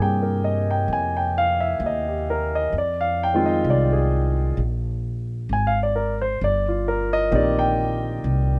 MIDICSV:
0, 0, Header, 1, 3, 480
1, 0, Start_track
1, 0, Tempo, 921659
1, 1416, Time_signature, 4, 2, 24, 8
1, 4475, End_track
2, 0, Start_track
2, 0, Title_t, "Grand piano"
2, 0, Program_c, 0, 0
2, 0, Control_c, 0, 64, 127
2, 0, Note_on_c, 0, 48, 49
2, 0, Note_on_c, 0, 58, 44
2, 0, Note_on_c, 0, 67, 56
2, 0, Note_on_c, 0, 68, 48
2, 0, Note_on_c, 0, 80, 67
2, 10, Note_on_c, 0, 79, 75
2, 117, Note_on_c, 0, 70, 45
2, 152, Note_off_c, 0, 79, 0
2, 231, Note_on_c, 0, 75, 65
2, 287, Note_off_c, 0, 70, 0
2, 339, Note_off_c, 0, 75, 0
2, 367, Note_on_c, 0, 79, 68
2, 446, Note_off_c, 0, 79, 0
2, 483, Note_off_c, 0, 80, 0
2, 483, Note_on_c, 0, 80, 74
2, 607, Note_on_c, 0, 79, 72
2, 629, Note_off_c, 0, 80, 0
2, 718, Note_off_c, 0, 48, 0
2, 718, Note_off_c, 0, 68, 0
2, 718, Note_on_c, 0, 77, 79
2, 720, Note_off_c, 0, 58, 0
2, 723, Note_off_c, 0, 67, 0
2, 773, Note_off_c, 0, 79, 0
2, 823, Note_off_c, 0, 77, 0
2, 836, Note_on_c, 0, 76, 70
2, 921, Note_off_c, 0, 76, 0
2, 969, Note_on_c, 0, 75, 69
2, 1087, Note_on_c, 0, 67, 43
2, 1113, Note_off_c, 0, 75, 0
2, 1199, Note_on_c, 0, 70, 73
2, 1253, Note_off_c, 0, 67, 0
2, 1304, Note_off_c, 0, 70, 0
2, 1330, Note_on_c, 0, 75, 73
2, 1408, Note_off_c, 0, 75, 0
2, 1421, Control_c, 0, 64, 0
2, 1449, Note_on_c, 0, 74, 70
2, 1508, Control_c, 0, 64, 127
2, 1566, Note_on_c, 0, 77, 69
2, 1592, Note_off_c, 0, 74, 0
2, 1684, Note_on_c, 0, 79, 81
2, 1733, Note_off_c, 0, 77, 0
2, 1739, Note_on_c, 0, 56, 57
2, 1742, Note_on_c, 0, 51, 57
2, 1746, Note_on_c, 0, 60, 56
2, 1748, Note_on_c, 0, 65, 67
2, 1787, Note_off_c, 0, 79, 0
2, 1800, Note_on_c, 0, 75, 67
2, 1878, Note_off_c, 0, 56, 0
2, 1879, Note_off_c, 0, 51, 0
2, 1881, Note_off_c, 0, 60, 0
2, 1882, Note_off_c, 0, 65, 0
2, 1883, Note_off_c, 0, 75, 0
2, 1927, Note_on_c, 0, 74, 71
2, 2046, Note_on_c, 0, 68, 63
2, 2072, Note_off_c, 0, 74, 0
2, 2149, Note_off_c, 0, 68, 0
2, 2382, Control_c, 0, 64, 0
2, 2879, Note_on_c, 0, 80, 67
2, 2953, Note_on_c, 0, 77, 76
2, 2974, Note_off_c, 0, 80, 0
2, 3008, Note_off_c, 0, 77, 0
2, 3036, Note_on_c, 0, 74, 70
2, 3102, Note_on_c, 0, 70, 70
2, 3191, Note_off_c, 0, 74, 0
2, 3215, Note_off_c, 0, 70, 0
2, 3237, Note_on_c, 0, 72, 73
2, 3321, Note_off_c, 0, 72, 0
2, 3354, Note_on_c, 0, 74, 83
2, 3449, Control_c, 0, 64, 127
2, 3481, Note_on_c, 0, 65, 45
2, 3505, Note_off_c, 0, 74, 0
2, 3584, Note_on_c, 0, 70, 74
2, 3650, Note_off_c, 0, 65, 0
2, 3696, Note_off_c, 0, 70, 0
2, 3713, Note_on_c, 0, 75, 92
2, 3799, Note_off_c, 0, 75, 0
2, 3808, Note_on_c, 0, 51, 51
2, 3808, Note_on_c, 0, 58, 49
2, 3811, Note_on_c, 0, 60, 51
2, 3815, Note_on_c, 0, 67, 62
2, 3830, Note_on_c, 0, 74, 75
2, 3951, Note_on_c, 0, 79, 77
2, 3982, Note_off_c, 0, 74, 0
2, 4059, Note_off_c, 0, 79, 0
2, 4108, Note_off_c, 0, 51, 0
2, 4108, Note_off_c, 0, 58, 0
2, 4110, Note_off_c, 0, 60, 0
2, 4112, Note_off_c, 0, 67, 0
2, 4475, End_track
3, 0, Start_track
3, 0, Title_t, "Upright bass"
3, 0, Program_c, 1, 32
3, 0, Note_on_c, 1, 43, 78
3, 441, Note_off_c, 1, 43, 0
3, 457, Note_on_c, 1, 41, 67
3, 922, Note_off_c, 1, 41, 0
3, 936, Note_on_c, 1, 39, 71
3, 1401, Note_off_c, 1, 39, 0
3, 1419, Note_on_c, 1, 41, 66
3, 1883, Note_off_c, 1, 41, 0
3, 1898, Note_on_c, 1, 36, 78
3, 2363, Note_off_c, 1, 36, 0
3, 2380, Note_on_c, 1, 34, 74
3, 2844, Note_off_c, 1, 34, 0
3, 2860, Note_on_c, 1, 32, 72
3, 3323, Note_off_c, 1, 32, 0
3, 3340, Note_on_c, 1, 31, 72
3, 3803, Note_off_c, 1, 31, 0
3, 3811, Note_on_c, 1, 34, 85
3, 4279, Note_off_c, 1, 34, 0
3, 4291, Note_on_c, 1, 36, 74
3, 4475, Note_off_c, 1, 36, 0
3, 4475, End_track
0, 0, End_of_file